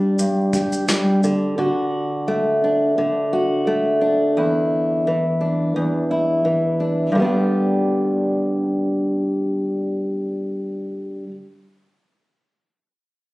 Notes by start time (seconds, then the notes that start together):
Already playing: G2 G3 D4 G4
0.19 G2, shaker
0.53 G4, kick, shaker
0.72 shaker
0.88 G3, snare, shaker
1.23 D3, shaker
1.58 D3 F#4
2.28 A3
2.64 D4
2.98 D3
3.33 F#4
3.67 A3
4.01 D4
4.37 E2 E4
5.07 E3
5.41 D4
5.76 E2
6.11 E4
6.45 E3
6.80 D4
7.12 G2 D3
7.17 G3 B3
7.22 D4 G4